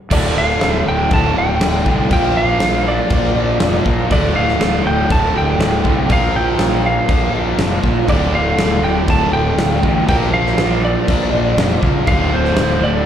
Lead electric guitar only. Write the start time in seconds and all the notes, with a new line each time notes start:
0.12 D5
0.38 F5
0.72 E5
0.88 G5
1.14 A5
1.38 G5
2.13 G5
2.37 F5
2.88 D5
4.12 D5
4.36 F5
4.87 G5
5.12 A5
5.38 G5
6.12 F5
6.36 G5
6.86 F5
8.09 D5
8.35 F5
8.84 G5
9.10 A5
9.33 G5
10.09 G5
10.34 F5
10.85 D5
12.08 F5
12.35 C5
12.84 D5